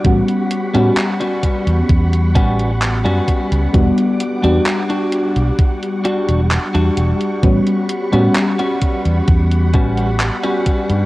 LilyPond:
<<
  \new Staff \with { instrumentName = "String machine" } { \time 4/4 \key a \mixolydian \tempo 4 = 65 << { cis'''1 | d'''2 cis'''2~ | cis'''1 | } \\ { <g fis'' b''>1~ | <g fis'' b''>1 | <fis'' b''>1 | } >> }
  \new Staff \with { instrumentName = "Clean electric guitar" } { \time 4/4 \key a \mixolydian r8. <g b cis' fis'>16 r16 <g b cis' fis'>8. r8 <g b cis' fis'>8 r16 <g b cis' fis'>8. | r8. <g d' fis'>16 r16 <g d' fis'>8. r8 <g d' fis'>8 r16 <g d' fis'>8. | r8. <g b cis' fis'>16 r16 <g b cis' fis'>8. r8 <g b cis' fis'>8 r16 <g b cis' fis'>8. | }
  \new Staff \with { instrumentName = "FM electric piano" } { \time 4/4 \key a \mixolydian <g b cis' fis'>8. <g b cis' fis'>2.~ <g b cis' fis'>16 | <g b d' fis'>8. <g b d' fis'>2.~ <g b d' fis'>16 | <g b cis' fis'>8. <g b cis' fis'>2.~ <g b cis' fis'>16 | }
  \new Staff \with { instrumentName = "Fingered electric bass" } { \clef bass \time 4/4 \key a \mixolydian a,,16 r8 a,16 r8. e,16 e,8 a,,8. fis,16 r16 cis,16 | e,,16 r8 e,16 r8. b,,16 r8. e,,16 r16 e,16 e,,16 r16 | a,,16 r8 a,16 r8. e,16 e,8 a,,8 r8. g,16 | }
  \new DrumStaff \with { instrumentName = "Drums" } \drummode { \time 4/4 <hh bd>16 hh16 hh16 hh16 <hc hh>16 hh16 <hh bd>16 hh16 <hh bd>16 hh16 <hh bd>16 hh16 <hc hh>16 hh16 <hh bd>16 hh16 | <hh bd>16 hh16 hh16 hh16 <hc hh>16 hh16 hh16 hh16 <hh bd>16 hh16 hh16 hh16 <hc hh>16 hh16 hh16 hh16 | <hh bd>16 hh16 hh16 hh16 <hc hh>16 hh16 <hh bd>16 hh16 <hh bd>16 hh16 <hh bd>16 hh16 <hc hh>16 hh16 <hh bd>16 hh16 | }
>>